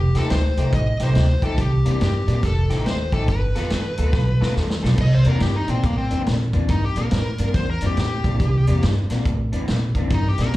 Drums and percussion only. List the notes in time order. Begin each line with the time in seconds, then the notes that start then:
0.15 snare, closed hi-hat
0.30 snare, closed hi-hat
0.57 closed hi-hat
0.73 kick, closed hi-hat
1.00 snare, closed hi-hat
1.15 snare, closed hi-hat
1.42 kick, closed hi-hat
1.58 kick, closed hi-hat
1.85 closed hi-hat
2.01 snare, closed hi-hat
2.28 closed hi-hat
2.43 kick, snare, closed hi-hat
2.70 snare, closed hi-hat
2.86 snare, closed hi-hat
3.12 kick, closed hi-hat
3.28 kick, closed hi-hat
3.55 snare, closed hi-hat
3.70 snare, closed hi-hat
3.97 closed hi-hat
4.13 kick, snare
4.42 snare
4.56 snare
4.70 snare
4.84 snare
4.98 kick, crash
5.24 closed hi-hat
5.40 snare, closed hi-hat
5.68 closed hi-hat
5.83 kick, closed hi-hat
6.11 closed hi-hat
6.26 snare, closed hi-hat
6.53 kick, closed hi-hat
6.68 kick, closed hi-hat
6.96 closed hi-hat
7.11 snare, closed hi-hat
7.38 closed hi-hat
7.54 kick, snare, closed hi-hat
7.81 closed hi-hat
7.97 snare, closed hi-hat
8.24 kick, closed hi-hat
8.40 kick, closed hi-hat
8.67 closed hi-hat
8.83 snare, closed hi-hat
9.10 snare, closed hi-hat
9.25 kick, closed hi-hat
9.53 closed hi-hat
9.68 snare, closed hi-hat
9.95 kick, closed hi-hat
10.10 kick, closed hi-hat
10.38 snare, closed hi-hat
10.53 closed hi-hat